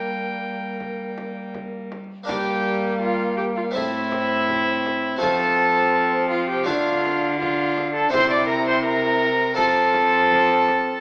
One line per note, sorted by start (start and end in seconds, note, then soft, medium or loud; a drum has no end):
0.00 2.03 G3 soft
0.00 2.04 G3 medium
0.00 1.92 A#3 soft
0.00 2.22 A#3 soft
0.00 2.23 D4 soft
0.00 1.86 A#4 medium
0.00 2.23 A#4 soft
0.00 1.50 G5 medium
0.80 frame drum soft
1.18 frame drum soft
1.54 frame drum soft
1.92 frame drum soft
2.24 3.75 G3 medium
2.24 3.70 G3 medium
2.24 3.68 A#3 medium
2.24 3.69 D4 medium
2.24 2.97 G4 medium
2.24 3.69 A#4 medium
2.28 3.76 A#3 medium
2.28 2.97 G5 medium
2.28 frame drum medium
3.01 3.37 F4 medium
3.01 3.37 F5 medium
3.37 3.45 G4 medium
3.37 3.44 G5 medium
3.56 3.63 F4 medium
3.56 3.75 F5 medium
3.71 5.21 A2 medium
3.71 5.17 A2 medium
3.71 5.15 A3 soft
3.71 5.16 C4 medium
3.71 5.21 C4 medium
3.71 5.17 E4 medium
3.71 5.18 E4 loud
3.71 5.21 E5 medium
3.76 frame drum medium
4.12 frame drum medium
4.49 frame drum medium
4.86 frame drum soft
5.17 6.62 F3 medium
5.17 6.61 A3 medium
5.17 6.61 C4 medium
5.17 6.62 F4 medium
5.21 6.67 F3 medium
5.21 6.69 C4 medium
5.21 6.28 A4 loud
5.21 6.28 A5 loud
5.21 frame drum medium
6.30 6.48 F4 medium
6.30 6.49 F5 medium
6.49 6.67 G4 loud
6.49 6.67 G5 medium
6.63 8.11 D3 medium
6.63 8.08 D3 medium
6.63 8.06 A3 medium
6.63 8.07 D4 medium
6.63 8.07 F4 medium
6.63 7.38 F4 loud
6.67 7.39 D4 medium
6.67 7.39 F5 medium
6.67 frame drum medium
7.05 frame drum medium
7.39 8.10 D4 medium
7.39 7.92 F4 loud
7.39 7.93 F5 medium
7.39 frame drum medium
7.78 frame drum medium
7.94 8.12 A4 loud
7.94 8.12 A5 medium
8.09 9.59 C3 medium
8.09 9.53 C3 medium
8.09 9.52 C4 medium
8.09 9.52 E4 medium
8.09 9.53 G4 medium
8.09 8.30 C5 loud
8.09 8.33 C6 loud
8.13 9.28 E4 medium
8.13 frame drum medium
8.31 8.46 D5 medium
8.31 8.49 D6 medium
8.46 8.54 A#4 loud
8.46 8.67 A#5 loud
8.68 8.84 C5 loud
8.68 8.85 C6 medium
8.84 9.56 A#4 loud
8.84 9.56 A#5 medium
9.54 11.00 F3 medium
9.54 10.98 C4 medium
9.54 11.00 C4 medium
9.54 10.99 F4 medium
9.54 10.99 A4 medium
9.54 11.00 A4 loud
9.58 11.00 A5 loud
9.58 frame drum medium
9.94 frame drum medium
10.32 frame drum medium
10.68 frame drum soft